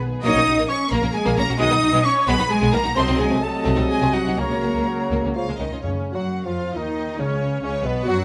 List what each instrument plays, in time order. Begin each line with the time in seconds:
Already playing: double bass section B1, trombone section D#3 G#3, violin section B3 G#4, french horn section B3 G#4, trumpet section B4
0.22 double bass section A#1, trombone section F#3 A#3, french horn section A#3 F#4, violin section A#3 D#6, cello section D#4, trumpet section C#5, viola section D#5, flute D#6
0.35 double bass section A#1, violin section A#3 C#4
0.47 double bass section A#1, violin section C#4 F#4
0.57 double bass section A#1, violin section A#3
0.69 cello section C#4, viola section C#5, flute C#6, violin section C#6
0.91 double bass section A#1, cello section A#3, violin section A#3 A#5, viola section A#4, flute A#5
1.03 double bass section A#1, violin section A#3 C#4
1.13 cello section G#3, viola section G#4, flute G#5, violin section G#5
1.25 double bass section A#1, violin section A#3
1.37 double bass section A#1, cello section A#3, violin section A#3 C#4 A#5, viola section A#4, flute A#5
1.49 double bass section A#1, violin section C#4 F#4
1.58 double bass section B1, trombone section D#3 G#3, violin section G#3 B3 D#6, french horn section B3 F#4, cello section D#4, viola section D#5, trumpet section D#5, flute D#6
1.70 double bass section B1, violin section B3 D#4
1.81 double bass section B1, violin section D#4 F#4
1.93 double bass section B1, violin section G#3 B3
2.04 cello section C#4, viola section C#5, violin section C#6, flute C#6
2.27 double bass section B1, violin section G#3 B3 B5, cello section B3, viola section B4, flute B5
2.39 double bass section B1, violin section B3 D#4
2.49 cello section G#3, viola section G#4, flute G#5, violin section G#5
2.62 double bass section B1, violin section G#3 B3
2.72 double bass section B1, cello section A#3, violin section B3 D#4 A#5, viola section A#4, flute A#5
2.83 double bass section B1, violin section D#4 F#4
2.96 double bass section C2, trombone section C3 F#3, violin section A3 C4 C6, cello section C4, french horn section C4 F#4, viola section C5, trumpet section D#5, flute C6
3.07 double bass section C2, violin section C4 D#4
3.18 double bass section C2, cello section G#3, violin section D#4 F#4 G#5, viola section G#4, flute G#5
3.29 double bass section C2, violin section A3 C4
3.43 trombone section C3 F#3, cello section A3, french horn section C4 F#4, viola section A4, trumpet section D#5, flute A5, violin section A5
3.64 double bass section C2, violin section A3 C4
3.76 double bass section C2, violin section C4 D#4
3.89 cello section G#3, viola section G#4, flute G#5, violin section G#5
4.01 double bass section C2, violin section A3 C4
4.12 double bass section C2, cello section F#3, violin section C4 D#4 F#5, viola section F#4, flute F#5
4.25 double bass section C2, violin section D#4 F#4
4.37 double bass section C#2, trombone section C#3 F#3, violin section A#3 A#5, cello section A#3, french horn section A#3 F#4, viola section A#4, trumpet section C#5, flute A#5
4.50 double bass section C#2, violin section A#3 C#4
4.62 double bass section C#2, violin section C#4 F#4
4.74 double bass section C#2, violin section A#3
4.88 bassoon F#3
5.11 double bass section C#2, viola section A#3, violin section A#3 A#4
5.23 double bass section C#2, violin section A#3 C#4
5.34 trombone section C#3 F3, bassoon F3, french horn section G#3 G#4, viola section F4, trumpet section C#5, violin section F5
5.47 double bass section C#2, violin section G#3
5.58 double bass section C#2, bassoon D#3, violin section G#3 C#4 D#5, viola section D#4
5.71 double bass section C#2, violin section C#4 F4
5.82 double bass section C#2, timpani F#2, trombone section C#3, cello section C#3, bassoon C#3, french horn section C#3, viola section C#4, flute C#4, trumpet section C#4, violin section C#5
6.12 double bass section F#2, cello section F#3, bassoon F#3, french horn section F#3, trombone section F#3, viola section F#4, trumpet section F#4, flute F#4, violin section F#5
6.44 double bass section F2, cello section F3, bassoon F3, trombone section F3, french horn section F3, viola section F4, flute F4, trumpet section F4, violin section F5
6.73 double bass section D#2, trombone section D#3, cello section D#3, bassoon D#3, french horn section D#3, viola section D#4, flute D#4, trumpet section D#4, violin section D#5
7.18 double bass section C#2, trombone section C#3, bassoon C#3, cello section C#3, french horn section C#3, viola section C#4, trumpet section C#4, flute C#4, violin section C#5
7.62 double bass section C#2, trombone section C#3, french horn section C#3, cello section C#3, bassoon C#3, viola section C#4, flute C#4, trumpet section C#4, violin section C#5
7.84 double bass section B1, trombone section B2, cello section B2, french horn section B2, bassoon B2, viola section B3, trumpet section B3, violin section B4, flute B4
8.05 double bass section F#2, trombone section F#3, french horn section F#3, bassoon F#3, cello section F#3, viola section F#4, trumpet section F#4, flute F#4, violin section F#5